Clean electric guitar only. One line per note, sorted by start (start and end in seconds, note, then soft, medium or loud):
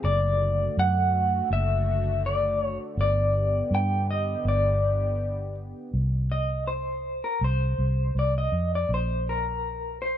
0.05 0.79 D5 medium
0.79 1.52 F#5 loud
1.53 2.26 E5 medium
2.26 2.63 D5 medium
2.63 2.77 C#5 medium
3.01 3.74 D5 medium
3.75 4.10 G5 medium
4.11 4.48 D#5 medium
4.48 5.54 D5 medium
6.32 6.67 D#5 medium
6.67 7.25 C5 medium
7.24 7.43 A#4 medium
7.44 8.13 C5 medium
8.19 8.36 D5 medium
8.38 8.74 D#5 medium
8.75 8.92 D5 medium
8.94 9.30 C5 medium
9.29 10.01 A#4 medium
10.02 10.18 C5 medium